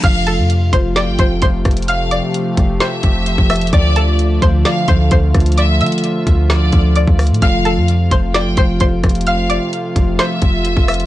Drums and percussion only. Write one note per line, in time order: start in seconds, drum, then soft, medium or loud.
0.04 kick loud
0.04 closed hi-hat medium
0.04 crash loud
0.27 closed hi-hat medium
0.50 closed hi-hat medium
0.73 kick medium
0.73 closed hi-hat medium
0.96 snare loud
0.96 closed hi-hat medium
1.19 kick loud
1.19 closed hi-hat medium
1.42 kick medium
1.42 closed hi-hat medium
1.65 kick loud
1.65 cross-stick loud
1.65 closed hi-hat medium
1.71 closed hi-hat medium
1.77 closed hi-hat medium
1.82 closed hi-hat medium
1.88 closed hi-hat medium
2.11 closed hi-hat medium
2.34 closed hi-hat medium
2.57 kick medium
2.57 closed hi-hat medium
2.80 snare loud
2.80 closed hi-hat medium
3.03 kick loud
3.03 closed hi-hat medium
3.26 closed hi-hat medium
3.38 kick loud
3.50 cross-stick loud
3.50 closed hi-hat medium
3.50 open hi-hat medium
3.56 closed hi-hat medium
3.61 closed hi-hat medium
3.67 closed hi-hat medium
3.73 kick loud
3.73 closed hi-hat medium
3.96 closed hi-hat medium
4.19 closed hi-hat medium
4.42 kick medium
4.42 closed hi-hat medium
4.65 snare loud
4.65 closed hi-hat medium
4.88 kick loud
4.88 closed hi-hat medium
5.11 kick loud
5.11 closed hi-hat medium
5.34 kick medium
5.34 cross-stick loud
5.34 closed hi-hat medium
5.40 closed hi-hat medium
5.46 closed hi-hat medium
5.52 closed hi-hat medium
5.58 closed hi-hat medium
5.81 closed hi-hat soft
5.86 closed hi-hat medium
5.92 closed hi-hat medium
5.98 closed hi-hat medium
6.04 closed hi-hat medium
6.27 kick medium
6.27 closed hi-hat medium
6.50 snare loud
6.50 closed hi-hat medium
6.72 kick loud
6.72 closed hi-hat medium
6.96 closed hi-hat medium
7.07 kick medium
7.19 cross-stick loud
7.19 closed hi-hat soft
7.19 open hi-hat medium
7.27 closed hi-hat medium
7.34 closed hi-hat medium
7.42 kick loud
7.42 closed hi-hat medium
7.65 closed hi-hat medium
7.88 closed hi-hat medium
8.11 kick medium
8.11 closed hi-hat medium
8.34 snare loud
8.34 closed hi-hat medium
8.57 kick loud
8.57 closed hi-hat medium
8.80 kick loud
8.80 closed hi-hat medium
9.04 kick loud
9.04 cross-stick loud
9.04 closed hi-hat medium
9.09 closed hi-hat medium
9.15 closed hi-hat medium
9.21 closed hi-hat medium
9.27 closed hi-hat medium
9.50 closed hi-hat medium
9.73 closed hi-hat medium
9.96 kick medium
9.96 closed hi-hat medium
10.19 snare loud
10.19 closed hi-hat medium
10.42 kick loud
10.42 closed hi-hat medium
10.65 closed hi-hat medium
10.77 kick loud
10.88 cross-stick loud
10.88 closed hi-hat medium
10.88 open hi-hat medium
10.94 closed hi-hat medium
11.00 closed hi-hat medium